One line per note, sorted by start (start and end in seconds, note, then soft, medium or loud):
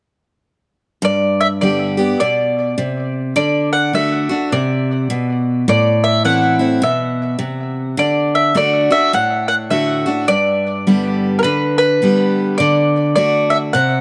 1.02 2.14 G2 medium
1.02 1.41 D5 medium
1.41 1.46 E5 medium
1.61 1.96 D3 soft
1.61 1.96 G3 medium
1.61 1.97 B3 soft
1.61 1.96 G4 soft
1.61 2.19 D5 medium
1.97 2.20 B3 soft
1.97 2.19 G4 medium
2.20 2.76 B2 medium
2.20 2.74 D5 medium
2.78 3.33 C3 medium
3.36 3.92 D3 medium
3.36 3.69 D5 medium
3.73 3.93 F#5 medium
3.93 4.28 D3 soft
3.93 4.28 A3 soft
3.93 4.28 D4 medium
3.93 4.28 F#4 medium
3.93 4.48 E5 medium
4.29 4.51 D4 soft
4.29 4.51 F#4 medium
4.52 5.07 C3 medium
4.52 5.41 D5 medium
5.10 5.65 B2 medium
5.68 6.78 A2 medium
5.68 6.05 D5 medium
6.04 6.24 E5 medium
6.24 6.59 E3 medium
6.24 6.59 A3 soft
6.24 6.59 C4 soft
6.24 6.58 E4 medium
6.24 6.84 F#5 medium
6.59 6.82 C4 soft
6.59 6.81 E4 medium
6.82 7.38 B2 medium
6.82 7.37 E5 medium
7.39 7.95 C3 medium
7.97 8.53 D3 medium
7.97 8.35 D5 medium
8.35 8.55 E5 medium
8.54 8.89 D3 medium
8.54 8.89 A3 medium
8.54 8.90 D4 medium
8.54 8.89 F#4 medium
8.54 8.93 D5 medium
8.90 9.12 D4 soft
8.90 9.12 F#4 medium
8.90 9.14 E5 medium
9.13 10.24 A2 medium
9.13 9.47 F#5 medium
9.48 9.54 F#5 medium
9.70 10.05 D3 medium
9.70 10.05 A3 medium
9.70 10.05 D4 medium
9.70 10.05 F#4 medium
9.70 10.28 E5 medium
10.06 10.28 D4 soft
10.06 10.27 F#4 medium
10.28 11.39 G2 medium
10.28 11.34 D5 medium
10.87 11.42 D3 soft
10.87 11.42 G3 medium
10.87 11.42 B3 medium
10.87 11.43 G4 medium
11.39 11.42 A#4 medium
11.43 12.01 D3 medium
11.43 11.77 B4 medium
11.78 12.57 B4 medium
12.02 12.57 D3 soft
12.02 12.57 G3 medium
12.02 12.58 B3 medium
12.02 12.58 G4 medium
12.58 13.15 D3 medium
12.58 13.14 D5 medium
13.16 13.72 D3 medium
13.16 13.72 A3 medium
13.16 13.72 D4 medium
13.16 13.73 F#4 medium
13.16 13.53 D5 medium
13.50 13.56 E5 medium
13.73 14.01 C3 medium
13.73 14.01 F#5 medium